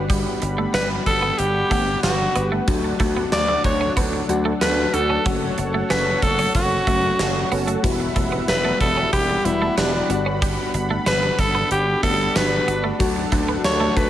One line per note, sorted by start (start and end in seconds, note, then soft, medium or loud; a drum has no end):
0.00 0.24 G1 loud
0.00 0.81 G3 medium
0.00 2.64 G3 medium
0.00 0.81 B3 medium
0.00 0.81 D4 medium
0.00 0.82 F#4 medium
0.00 12.96 F#5 medium
0.00 2.65 B5 medium
0.10 0.23 G3 medium
0.10 kick loud
0.10 closed hi-hat medium
0.42 0.65 G1 medium
0.42 muted clean electric guitar stroke soft
0.42 closed hi-hat medium
0.58 0.72 A3 medium
0.74 0.97 G1 loud
0.74 0.88 B3 medium
0.74 0.89 B4 loud
0.74 snare loud
0.74 closed hi-hat medium
0.74 tambourine medium
0.90 muted clean electric guitar stroke soft
1.06 1.30 G1 loud
1.06 1.40 A4 loud
1.06 kick medium
1.06 closed hi-hat medium
1.22 1.36 B3 medium
1.39 1.62 G1 loud
1.39 2.03 G4 medium
1.39 closed hi-hat medium
1.70 1.94 G1 medium
1.70 2.48 G3 medium
1.70 1.85 A3 medium
1.70 2.49 B3 medium
1.70 2.49 D4 medium
1.70 2.49 F#5 medium
1.70 kick medium
1.70 closed hi-hat medium
2.03 2.26 G1 medium
2.03 2.17 B3 medium
2.03 2.48 F#4 medium
2.03 2.17 G4 medium
2.03 2.17 B4 medium
2.03 muted clean electric guitar stroke soft
2.03 snare loud
2.03 closed hi-hat medium
2.03 tambourine medium
2.35 2.59 G1 medium
2.35 2.63 B3 medium
2.35 2.49 B3 medium
2.35 2.63 G4 medium
2.35 2.63 B4 loud
2.35 closed hi-hat medium
2.52 2.65 A3 medium
2.67 2.91 D2 loud
2.67 3.71 F#3 medium
2.67 3.71 A3 medium
2.67 3.72 D4 medium
2.67 5.23 D4 medium
2.67 3.72 F#4 loud
2.67 7.80 A4 medium
2.67 kick loud
2.67 closed hi-hat medium
2.84 muted clean electric guitar stroke soft
3.00 3.23 D2 loud
3.00 3.14 A3 medium
3.00 kick loud
3.00 closed hi-hat medium
3.17 3.30 B3 medium
3.32 3.56 D2 loud
3.32 3.63 D5 loud
3.32 snare loud
3.32 closed hi-hat medium
3.32 tambourine medium
3.48 3.62 A3 medium
3.64 3.88 D2 loud
3.64 3.95 C#5 medium
3.64 muted clean electric guitar stroke soft
3.64 kick medium
3.64 closed hi-hat medium
3.81 3.94 C#4 medium
3.97 4.20 D2 loud
3.97 4.10 B3 medium
3.97 kick medium
3.97 closed hi-hat medium
4.13 muted clean electric guitar stroke soft
4.28 4.52 D2 medium
4.28 5.07 F#3 medium
4.28 5.07 A3 medium
4.28 5.07 D4 medium
4.28 5.07 F#4 medium
4.28 closed hi-hat medium
4.45 4.59 A3 medium
4.61 4.84 D2 medium
4.61 4.75 B3 medium
4.61 4.75 D4 medium
4.61 4.75 F#4 medium
4.61 4.75 A4 medium
4.61 4.96 B4 loud
4.61 snare loud
4.61 closed hi-hat medium
4.61 tambourine medium
4.93 5.17 D2 medium
4.93 5.21 D4 medium
4.93 5.21 F#4 medium
4.93 5.21 A4 loud
4.93 5.26 A4 medium
4.93 muted clean electric guitar stroke soft
4.93 closed hi-hat medium
5.10 5.23 C#4 medium
5.25 5.49 F#1 loud
5.25 6.29 F#3 medium
5.25 5.39 F#3 medium
5.25 6.30 A3 medium
5.25 6.30 C#4 medium
5.25 6.30 F#4 medium
5.25 7.81 C#5 medium
5.25 7.81 C#6 medium
5.25 kick loud
5.25 closed hi-hat medium
5.58 5.81 F#1 loud
5.58 muted clean electric guitar stroke soft
5.58 closed hi-hat medium
5.74 5.88 A3 medium
5.90 6.14 F#1 loud
5.90 6.04 C#4 medium
5.90 6.24 B4 loud
5.90 snare loud
5.90 closed hi-hat medium
5.90 tambourine medium
6.07 muted clean electric guitar stroke soft
6.22 6.46 F#1 loud
6.22 6.55 A4 medium
6.22 kick medium
6.22 closed hi-hat medium
6.39 6.52 C#4 medium
6.39 closed hi-hat medium
6.55 6.78 F#1 loud
6.55 7.48 F#4 medium
6.55 kick medium
6.55 closed hi-hat medium
6.87 7.10 F#1 medium
6.87 7.65 F#3 medium
6.87 7.65 A3 medium
6.87 7.01 A3 medium
6.87 7.65 C#4 medium
6.87 7.65 F#4 medium
6.87 kick medium
6.87 closed hi-hat medium
7.19 7.43 F#1 loud
7.19 7.33 C#4 medium
7.19 7.33 F#4 medium
7.19 7.33 A4 medium
7.19 muted clean electric guitar stroke soft
7.19 snare loud
7.19 closed hi-hat medium
7.19 tambourine medium
7.51 7.75 F#1 loud
7.51 7.65 B3 medium
7.51 7.79 C#4 loud
7.51 7.79 F#4 medium
7.51 7.79 A4 loud
7.51 open hi-hat medium
7.68 7.81 A3 medium
7.68 closed hi-hat medium
7.83 8.07 E1 loud
7.83 8.87 G3 medium
7.83 12.96 G3 medium
7.83 8.87 B3 medium
7.83 8.88 E4 medium
7.83 8.88 F#4 loud
7.83 10.07 E5 medium
7.83 12.96 B5 medium
7.83 kick loud
7.83 closed hi-hat loud
8.00 muted clean electric guitar stroke soft
8.16 8.39 E1 medium
8.16 8.30 A3 medium
8.16 kick loud
8.16 closed hi-hat medium
8.32 8.46 B3 medium
8.48 8.72 E1 loud
8.48 8.79 B4 loud
8.48 snare loud
8.48 closed hi-hat medium
8.48 tambourine medium
8.65 8.78 A3 medium
8.80 9.04 E1 medium
8.80 9.11 A4 loud
8.80 muted clean electric guitar stroke soft
8.80 kick medium
8.80 closed hi-hat medium
8.97 9.11 C#4 medium
9.13 9.36 E1 loud
9.13 9.27 B3 medium
9.13 9.47 G4 medium
9.13 kick medium
9.13 closed hi-hat medium
9.29 muted clean electric guitar stroke soft
9.45 9.68 E1 loud
9.45 10.08 G3 medium
9.45 10.08 B3 medium
9.45 9.77 E4 medium
9.45 10.10 E4 medium
9.45 10.09 F#4 medium
9.45 closed hi-hat medium
9.62 9.75 A3 medium
9.77 10.00 E1 loud
9.77 9.91 B3 medium
9.77 10.23 D4 medium
9.77 9.91 E4 medium
9.77 9.91 G4 medium
9.77 snare loud
9.77 closed hi-hat medium
9.77 tambourine loud
10.09 10.56 G1 loud
10.09 11.13 G3 medium
10.09 11.13 B3 medium
10.09 10.37 B3 medium
10.09 10.37 D4 loud
10.09 14.10 D4 medium
10.09 11.14 D4 medium
10.09 10.37 F#4 loud
10.09 11.14 F#4 medium
10.09 muted clean electric guitar stroke soft
10.09 closed hi-hat medium
10.26 10.40 C#4 medium
10.42 10.56 G3 medium
10.42 kick loud
10.42 closed hi-hat loud
10.74 10.97 G1 medium
10.74 muted clean electric guitar stroke soft
10.74 closed hi-hat medium
10.91 11.04 A3 medium
11.06 11.30 G1 medium
11.06 11.20 B3 medium
11.06 11.41 B4 loud
11.06 snare loud
11.06 closed hi-hat medium
11.06 tambourine medium
11.23 muted clean electric guitar stroke soft
11.39 11.62 G1 loud
11.39 11.71 A4 medium
11.39 kick medium
11.39 closed hi-hat medium
11.55 11.68 B3 medium
11.71 11.94 G1 loud
11.71 12.02 G4 medium
11.71 closed hi-hat medium
12.03 12.26 G1 loud
12.03 12.81 G3 medium
12.03 12.17 A3 medium
12.03 12.81 B3 medium
12.03 12.81 D4 medium
12.03 12.10 F#4 medium
12.03 12.38 A4 loud
12.03 kick medium
12.03 closed hi-hat medium
12.10 12.85 G4 medium
12.35 12.59 G1 loud
12.35 12.49 B3 medium
12.35 12.49 D4 medium
12.35 12.49 F#4 medium
12.35 12.84 B4 medium
12.35 muted clean electric guitar stroke soft
12.35 snare loud
12.35 closed hi-hat medium
12.35 tambourine medium
12.67 12.91 G1 loud
12.67 12.95 B3 medium
12.67 12.81 B3 medium
12.67 12.95 D4 medium
12.67 12.95 F#4 loud
12.67 closed hi-hat medium
12.84 12.97 A3 medium
12.99 13.23 D2 loud
12.99 14.03 F#3 medium
12.99 14.04 A3 medium
12.99 14.04 D4 medium
12.99 14.04 F#4 loud
12.99 14.10 A4 medium
12.99 14.10 F#5 medium
12.99 14.10 A5 medium
12.99 kick loud
12.99 closed hi-hat loud
13.16 muted clean electric guitar stroke soft
13.32 13.55 D2 loud
13.32 13.46 A3 medium
13.32 kick medium
13.32 closed hi-hat medium
13.49 13.62 B3 medium
13.64 13.88 D2 loud
13.64 13.99 C#5 loud
13.64 snare loud
13.64 closed hi-hat medium
13.64 tambourine medium
13.80 13.94 A3 medium
13.96 14.10 D2 loud
13.96 14.10 B4 loud
13.96 muted clean electric guitar stroke soft
13.96 kick medium
13.96 closed hi-hat medium